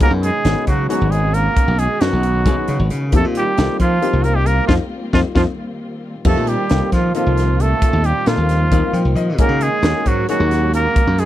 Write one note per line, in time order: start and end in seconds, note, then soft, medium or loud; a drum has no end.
0.00 0.10 C#2 medium
0.00 3.10 B2 medium
0.00 6.22 D#3 medium
0.00 3.10 G#3 medium
0.00 0.12 A#3 medium
0.00 0.38 B3 medium
0.00 0.38 C#4 medium
0.00 3.10 C#4 medium
0.00 0.38 D#4 medium
0.00 0.38 F#4 medium
0.00 3.10 F#4 medium
0.00 0.38 G#4 medium
0.00 0.11 A#4 loud
0.00 kick loud
0.00 closed hi-hat medium
0.11 0.30 F#2 medium
0.23 0.65 G#3 medium
0.23 0.65 G#4 medium
0.23 closed hi-hat medium
0.45 0.54 G#1 medium
0.45 0.82 B3 medium
0.45 0.82 C#4 soft
0.45 0.83 D#4 soft
0.45 0.83 F#4 soft
0.45 0.83 G#4 medium
0.45 snare medium
0.45 closed hi-hat medium
0.67 0.86 C#3 medium
0.67 0.89 F#3 medium
0.67 0.88 F#4 medium
0.67 kick medium
0.67 closed hi-hat medium
0.89 1.14 F#3 medium
0.89 1.64 B3 medium
0.89 1.64 C#4 medium
0.89 1.64 D#4 medium
0.89 1.13 F#4 medium
0.89 1.64 F#4 medium
0.89 1.64 G#4 medium
0.89 closed hi-hat medium
1.01 1.47 G#1 medium
1.11 1.36 G#3 medium
1.11 1.35 G#4 medium
1.11 closed hi-hat soft
1.34 1.80 A#3 medium
1.34 1.80 A#4 loud
1.34 closed hi-hat medium
1.56 muted slap bass stroke soft
1.56 kick loud
1.56 closed hi-hat medium
1.68 1.86 B1 medium
1.79 2.03 G#3 medium
1.79 2.02 G#4 medium
1.79 closed hi-hat medium
2.01 2.10 F#2 medium
2.01 2.91 F#3 medium
2.01 2.38 B3 medium
2.01 2.38 C#4 medium
2.01 2.38 D#4 medium
2.01 2.90 F#4 medium
2.01 2.39 F#4 soft
2.01 2.39 B4 medium
2.01 snare loud
2.01 closed hi-hat medium
2.13 2.40 B1 medium
2.23 closed hi-hat medium
2.46 2.55 B1 medium
2.46 3.13 B3 medium
2.46 3.13 C#4 medium
2.46 3.11 D#4 medium
2.46 3.13 F#4 medium
2.46 3.13 G#4 medium
2.46 kick loud
2.46 closed hi-hat medium
2.68 2.78 C#3 medium
2.68 closed hi-hat medium
2.79 2.88 G#1 medium
2.90 3.14 C#3 medium
2.90 closed hi-hat medium
3.12 3.22 F2 loud
3.12 6.23 G3 medium
3.12 3.25 A3 medium
3.12 3.50 A#3 medium
3.12 6.24 A#3 medium
3.12 3.50 C4 medium
3.12 6.24 C4 medium
3.12 3.50 D#4 medium
3.12 3.50 F4 medium
3.12 6.23 F4 medium
3.12 3.50 G4 medium
3.12 3.25 A4 loud
3.12 kick loud
3.12 closed hi-hat medium
3.25 3.43 A#2 medium
3.35 3.78 G4 medium
3.35 closed hi-hat medium
3.39 3.79 G3 medium
3.57 3.67 C2 medium
3.57 3.95 A#3 medium
3.57 3.95 C4 medium
3.57 3.95 D#4 medium
3.57 3.95 F4 medium
3.57 3.95 A4 medium
3.57 snare loud
3.57 closed hi-hat medium
3.80 3.98 F3 medium
3.80 4.28 F3 medium
3.80 4.25 F4 medium
3.80 kick medium
3.80 closed hi-hat medium
4.01 4.69 A#3 medium
4.01 4.67 C4 medium
4.01 4.67 D#4 medium
4.01 4.67 F4 medium
4.01 4.69 G4 medium
4.01 closed hi-hat medium
4.13 4.59 C2 medium
4.24 4.39 A#3 medium
4.24 4.37 A#4 medium
4.24 closed hi-hat medium
4.35 4.49 G3 medium
4.35 4.48 G4 loud
4.46 4.69 A#3 medium
4.46 4.67 A#4 medium
4.46 closed hi-hat medium
4.67 4.77 F2 medium
4.67 4.75 F3 medium
4.67 4.76 C4 medium
4.67 4.76 D#4 medium
4.67 4.73 F4 medium
4.67 4.76 F4 medium
4.67 kick medium
4.67 snare medium
5.13 5.22 F2 medium
5.13 5.20 F3 medium
5.13 5.21 C4 medium
5.13 5.21 D#4 medium
5.13 5.21 F4 medium
5.13 5.20 F4 medium
5.13 kick medium
5.13 snare medium
5.35 5.44 F2 medium
5.35 5.43 F3 medium
5.35 5.43 C4 medium
5.35 5.43 D#4 medium
5.35 5.43 F4 medium
5.35 5.42 F4 medium
5.35 kick medium
5.35 snare medium
6.25 6.34 F2 medium
6.25 11.25 A#2 medium
6.25 11.25 D#3 medium
6.25 9.37 G3 medium
6.25 6.51 A3 medium
6.25 6.63 A#3 medium
6.25 6.63 C4 medium
6.25 9.36 C4 medium
6.25 6.63 D#4 medium
6.25 6.63 F4 medium
6.25 9.37 F4 medium
6.25 6.63 G4 medium
6.25 6.50 A4 medium
6.25 kick loud
6.25 crash medium
6.37 6.55 A#2 medium
6.47 6.94 G3 medium
6.47 6.92 G4 medium
6.47 closed hi-hat medium
6.70 6.80 C2 medium
6.70 7.08 A#3 medium
6.70 7.08 C4 medium
6.70 7.08 D#4 soft
6.70 7.08 F4 medium
6.70 7.08 A4 medium
6.70 snare medium
6.70 closed hi-hat medium
6.92 7.11 F3 medium
6.92 7.15 F3 medium
6.92 7.14 F4 medium
6.92 kick medium
6.92 snare soft
6.92 closed hi-hat medium
7.15 7.63 F3 medium
7.15 7.90 A#3 medium
7.15 7.90 C4 medium
7.15 7.90 D#4 medium
7.15 7.63 F4 medium
7.15 7.90 F4 medium
7.15 7.90 A4 medium
7.15 closed hi-hat medium
7.26 7.72 C2 medium
7.37 snare soft
7.37 closed hi-hat medium
7.60 8.07 A3 medium
7.60 8.07 A4 medium
7.60 closed hi-hat medium
7.82 muted slap bass stroke soft
7.82 kick loud
7.82 closed hi-hat medium
7.93 8.12 D#2 medium
8.04 8.30 G3 medium
8.04 8.29 G4 medium
8.04 closed hi-hat medium
8.26 8.36 A#2 medium
8.26 9.17 F3 medium
8.26 8.65 A#3 medium
8.26 8.65 C4 medium
8.26 8.65 D#4 medium
8.26 9.17 F4 medium
8.26 8.65 F4 medium
8.26 8.65 A4 medium
8.26 snare medium
8.26 closed hi-hat medium
8.37 8.65 D#2 medium
8.49 snare soft
8.49 closed hi-hat medium
8.72 8.81 D#2 medium
8.72 9.37 A#3 medium
8.72 9.39 C4 medium
8.72 9.37 D#4 medium
8.72 9.39 F4 medium
8.72 9.39 A#4 medium
8.72 kick loud
8.72 closed hi-hat medium
8.93 9.03 F3 medium
8.93 9.15 G5 medium
8.93 closed hi-hat medium
9.05 9.14 C2 medium
9.15 9.39 F3 medium
9.15 9.37 D#5 medium
9.15 closed hi-hat medium
9.38 9.48 G#2 loud
9.38 11.25 G#3 medium
9.38 9.76 A#3 medium
9.38 9.65 A#3 medium
9.38 9.76 C#4 medium
9.38 11.25 C#4 medium
9.38 9.76 D#4 medium
9.38 9.77 F#4 medium
9.38 11.25 F#4 medium
9.38 9.77 G#4 medium
9.38 9.64 A#4 loud
9.38 kick loud
9.38 closed hi-hat medium
9.49 9.68 C#3 medium
9.61 10.09 G#3 medium
9.61 10.09 G#4 loud
9.61 closed hi-hat medium
9.83 9.92 D#2 medium
9.83 10.22 A#3 medium
9.83 10.22 C#4 medium
9.83 10.22 D#4 medium
9.83 10.22 F#4 medium
9.83 10.22 A#4 medium
9.83 snare loud
9.83 closed hi-hat medium
10.06 10.25 G#2 medium
10.06 10.29 F#3 medium
10.06 10.29 F#4 medium
10.06 kick medium
10.06 closed hi-hat medium
10.29 10.71 F#3 medium
10.29 11.04 A#3 medium
10.29 11.04 C#4 medium
10.29 11.04 D#4 medium
10.29 11.04 F#4 medium
10.29 10.71 F#4 medium
10.29 11.04 G#4 medium
10.29 closed hi-hat medium
10.40 10.86 D#2 medium
10.51 snare soft
10.51 closed hi-hat medium
10.74 11.21 A#3 medium
10.74 11.21 A#4 loud
10.74 closed hi-hat medium
10.96 muted slap bass stroke soft
10.96 kick loud
10.96 closed hi-hat medium
11.07 11.25 F#2 medium
11.18 11.25 G#3 medium
11.18 11.25 G#4 medium
11.18 closed hi-hat medium